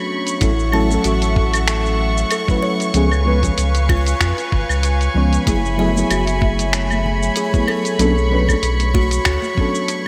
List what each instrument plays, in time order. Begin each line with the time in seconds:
Already playing: fm electric piano F#3 B3 C#4 D4 A4, string section A3 B5 C#6, synth texture C#5 C#6
0.27 closed hi-hat, shaker
0.40 sub bass A1, fm electric piano F#3 A3 C#4 E4 A4, kalimba E4, string section A4 E5 F#5, kick, closed hi-hat, shaker
0.59 shaker
0.72 fm electric piano F#3 A3 C#4 E4 A4, kalimba A5, claves
0.88 fm electric piano F#3 A3 C#4, shaker
0.93 fm electric piano E4 A4
1.04 sub bass A1, kalimba F#4, closed hi-hat, shaker
1.22 closed hi-hat, shaker
1.36 kick
1.54 closed hi-hat, claves, shaker
1.68 finger snap, closed hi-hat, shaker
1.86 shaker
2.17 shaker
2.31 kalimba A4, closed hi-hat, claves, shaker
2.48 fm electric piano F#3 A3 C#4 E4 B4, kick, shaker
2.63 kalimba C#5
2.80 closed hi-hat, shaker
2.94 sub bass C#2, fm electric piano F3 G#3 B3 C#4 G#4, string section B4 F5 G#5, closed hi-hat, shaker
3.11 claves, shaker
3.25 fm electric piano F3 G#3 B3 C#4 B4
3.41 fm electric piano F3 G#3 B3 C#4 G#4, kick, closed hi-hat, shaker
3.58 sub bass C#2, closed hi-hat, shaker
3.75 closed hi-hat, shaker
3.89 kalimba F4, kick, claves
4.06 closed hi-hat, shaker
4.21 sub bass F2, kalimba F4, finger snap, kick, closed hi-hat, shaker
4.38 closed hi-hat, shaker
4.52 sub bass G#1, kick
4.69 sub bass C#2, claves, shaker
4.83 closed hi-hat, shaker
5.01 closed hi-hat, shaker
5.14 sub bass C#2, fm electric piano F3 G#3 B3 C#4 C#5
5.33 closed hi-hat, shaker
5.46 sub bass F#1, fm electric piano F#3 A3 B3 E4 G#4, string section A3 E5 B5, kalimba E4, kick, closed hi-hat, high conga, shaker
5.65 shaker
5.78 fm electric piano F#3 A3 B3 E4 G#4, kalimba E5, low conga
5.93 fm electric piano F#3 A3 B3, high conga, shaker
5.98 fm electric piano E4 G#4
6.10 sub bass F#1, kalimba F#4, closed hi-hat, claves, shaker
6.27 closed hi-hat, shaker
6.41 kick, high conga
6.59 closed hi-hat, shaker
6.73 finger snap, closed hi-hat, shaker
6.90 high conga, claves, shaker
7.06 low conga
7.22 shaker
7.36 kalimba G#4, closed hi-hat, shaker
7.52 fm electric piano F#3 A3 B3 E4, kick, high conga, shaker
7.68 kalimba A4, claves
7.85 closed hi-hat, shaker
7.98 sub bass B1, fm electric piano F#3 B3 C#4 D4 A4, string section C#6, closed hi-hat, high conga, shaker
8.18 shaker
8.30 fm electric piano F#3 B3 C#4 D4 B4, low conga
8.48 fm electric piano F#3 B3 C#4 D4 A4, kick, high conga, claves, shaker
8.62 sub bass B1, closed hi-hat, shaker
8.80 closed hi-hat, shaker
8.94 kalimba F#4, kick, high conga
9.11 closed hi-hat, shaker
9.25 sub bass D2, kalimba F#4, finger snap, kick, closed hi-hat, claves, shaker
9.42 high conga, shaker
9.55 fm electric piano F#3 B3 C#4, kick
9.59 fm electric piano D4 A4
9.75 shaker
9.88 closed hi-hat, shaker